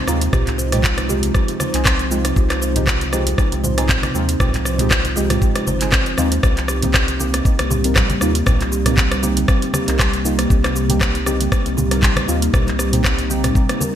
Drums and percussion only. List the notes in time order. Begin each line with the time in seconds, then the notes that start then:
0.07 cross-stick, muted conga, shaker
0.21 closed hi-hat, shaker
0.33 kick, cross-stick, mid tom, muted conga, shaker
0.47 clap, closed hi-hat, low conga, shaker
0.59 shaker
0.72 cross-stick, closed hi-hat, mid tom, muted conga, low conga, shaker
0.84 kick, clap, shaker
0.98 cross-stick, closed hi-hat, muted conga, shaker
1.09 high conga, shaker
1.23 closed hi-hat, muted conga, high conga, shaker
1.34 kick, cross-stick, shaker
1.48 closed hi-hat, muted conga, shaker
1.60 cross-stick, high conga, shaker
1.74 clap, closed hi-hat, shaker
1.85 kick, cross-stick, clap, muted conga, shaker
1.99 closed hi-hat, shaker
2.11 muted conga, high conga, shaker
2.25 cross-stick, closed hi-hat, shaker
2.36 kick, muted conga, shaker
2.50 cross-stick, clap, closed hi-hat, shaker
2.62 shaker
2.76 closed hi-hat, muted conga, high conga, low conga, shaker
2.87 kick, cross-stick, clap, shaker
3.01 closed hi-hat, muted conga, shaker
3.13 cross-stick, high conga, shaker
3.27 closed hi-hat, muted conga, high conga, shaker
3.38 kick, cross-stick, shaker
3.52 closed hi-hat, muted conga, shaker
3.64 mid tom, high conga, shaker
3.78 cross-stick, closed hi-hat, shaker
3.89 kick, clap, mid tom, muted conga, low conga, shaker
4.03 cross-stick, closed hi-hat, high conga, shaker
4.14 muted conga, shaker
4.29 closed hi-hat, shaker
4.40 kick, cross-stick, mid tom, muted conga, shaker
4.54 clap, closed hi-hat, low conga, shaker
4.65 cross-stick, shaker
4.78 closed hi-hat, mid tom, muted conga, low conga, shaker
4.91 kick, cross-stick, clap, shaker
5.05 closed hi-hat, muted conga, shaker
5.16 high conga, shaker
5.30 cross-stick, closed hi-hat, mid tom, muted conga, high conga, shaker
5.42 kick, shaker
5.56 cross-stick, closed hi-hat, muted conga, shaker
5.67 high conga, shaker
5.81 clap, closed hi-hat, shaker
5.92 kick, cross-stick, clap, muted conga, shaker
6.06 closed hi-hat, shaker
6.18 cross-stick, muted conga, high conga, shaker
6.32 closed hi-hat, shaker
6.43 kick, cross-stick, muted conga, shaker
6.57 clap, closed hi-hat, shaker
6.68 cross-stick, shaker
6.82 closed hi-hat, muted conga, high conga, low conga, shaker
6.94 kick, cross-stick, clap, shaker
7.08 closed hi-hat, muted conga, shaker
7.20 high conga, shaker
7.34 cross-stick, closed hi-hat, muted conga, high conga, shaker
7.45 kick, shaker
7.59 cross-stick, closed hi-hat, muted conga, shaker
7.70 mid tom, high conga, shaker
7.84 closed hi-hat, shaker
7.96 kick, cross-stick, clap, mid tom, muted conga, low conga, shaker
8.10 closed hi-hat, high conga, shaker
8.21 cross-stick, muted conga, shaker
8.35 closed hi-hat, shaker
8.46 kick, cross-stick, mid tom, muted conga, shaker
8.61 clap, closed hi-hat, low conga, shaker
8.72 shaker
8.86 cross-stick, closed hi-hat, mid tom, muted conga, low conga, shaker
8.97 kick, clap, shaker
9.11 cross-stick, closed hi-hat, muted conga, shaker
9.23 high conga, shaker
9.37 closed hi-hat, muted conga, high conga, shaker
9.48 kick, cross-stick, shaker
9.62 closed hi-hat, muted conga, shaker
9.73 cross-stick, high conga, shaker
9.88 clap, closed hi-hat, shaker
9.99 kick, cross-stick, clap, shaker
10.13 closed hi-hat, shaker
10.25 muted conga, high conga, shaker
10.39 cross-stick, closed hi-hat, shaker
10.50 kick, muted conga, shaker
10.64 cross-stick, clap, closed hi-hat, shaker
10.76 shaker
10.89 closed hi-hat, muted conga, high conga, low conga, shaker
11.01 kick, cross-stick, clap, shaker
11.15 closed hi-hat, muted conga, shaker
11.26 cross-stick, high conga, shaker
11.40 closed hi-hat, muted conga, high conga, shaker
11.52 kick, cross-stick, shaker
11.66 closed hi-hat, muted conga, shaker
11.77 mid tom, high conga, shaker
11.91 cross-stick, closed hi-hat, shaker
12.03 kick, clap, mid tom, muted conga, low conga, shaker
12.16 cross-stick, closed hi-hat, high conga, shaker
12.28 muted conga, shaker
12.42 closed hi-hat, shaker
12.54 kick, cross-stick, mid tom, muted conga, shaker
12.67 clap, closed hi-hat, low conga, shaker
12.79 cross-stick, shaker
12.93 closed hi-hat, mid tom, muted conga, low conga, shaker
13.04 kick, cross-stick, clap, shaker
13.19 closed hi-hat, muted conga, shaker
13.30 high conga, shaker
13.43 cross-stick, closed hi-hat, mid tom, muted conga, high conga, shaker
13.55 kick, shaker
13.69 cross-stick, closed hi-hat, muted conga, shaker
13.81 high conga, shaker